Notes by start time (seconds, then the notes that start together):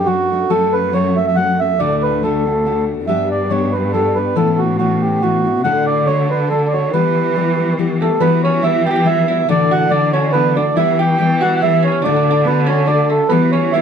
Already playing: F#2
0.06 F#3 A3 D4 F#4
0.30 A3 D4 F#4
0.50 F#2 F#3 A3 C#4 F#4 A4
0.73 B4
0.93 F#3 A3 C#4 F#4 C#5
1.16 A3 C#4 F#4 E5
1.27 E5
1.36 F#3 A3 C#4 F#4 F#5
1.60 A3 C#4 F#4 E5
1.79 D2 A2 D3 A3 D4 F#4 D5
2.03 B4
2.23 D3 A3 D4 F#4 A4
2.46 D3 A3 D4 F#4
2.65 D3 A3 D4 F#4
3.07 G2 G3 B3 D4 G4 E5
3.31 D5
3.50 G3 B3 D4 G4 C#5
3.72 B3 D4 G4 B4
3.93 G3 B3 D4 G4 A4
4.15 B3 D4 G4 B4
4.36 A2 E3 B3 C#4 E4 A4
4.58 F#4
4.78 E3 B3 C#4 E4 F#4
5.01 G4
5.22 E3 B3 C#4 E4 F#4
5.45 B3 C#4 E4
5.64 D2 A2 D3 A3 D4 F#4 F#5
5.87 D5
6.06 D3 A3 D4 F#4 C#5
6.30 D3 A3 D4 F#4 B4
6.50 D3 A3 D4 F#4 A4
6.67 D5
6.73 D3 A3 D4 F#4 C#5
6.93 E3 G3 B3 G4 B4
7.36 E3 G3 B3 G4
7.58 G3 B3 G4
7.78 E3 G3 B3 G4
8.01 G3 A3 B3 G4 A4
8.20 E3 G3 B3 F#4 B4
8.44 C#4 C#5
8.62 E3 G3 B3 E4 F#4 E5
8.84 G3 B3 F#4 G4 G5
8.91 G4
8.96 G4
9.04 E3 G3 B3 E4 F#4 E5
9.28 G3 B3 E4 F#4 E5
9.48 D2 A2 D3 E3 A3 D4 F#4 D5
9.71 F#4 F#5
9.89 E3 A3 D4 F#4 D5
10.13 E3 A3 C#4 D4 F#4 C#5
10.32 E3 A3 B3 D4 F#4 B4
10.56 E3 A3 D4 F#4 D5
10.76 E3 G3 B3 E4 G4 E5
10.99 G4 G5
11.18 E3 G3 B3 G4 G5
11.41 G3 B3 F#4 G4 F#5
11.56 F#5
11.61 E3 G3 B3 E4 G4 E5
11.83 C#4 C#5
11.88 C#4
11.92 C#4
12.02 D2 A2 D3 A3 D4 D5
12.06 D4 F#4
12.16 D4
12.31 D4
12.44 D3 A3 B3 D4 F#4 B4
12.66 A3 C#4 D4 F#4 C#5
12.71 D3
12.87 D3 A3 D4 F#4 D5
13.10 A3 A4
13.29 E3 G3 B3 F#4 B4
13.52 C#4 C#5
13.73 E3 G3 B3 E4 F#4 E5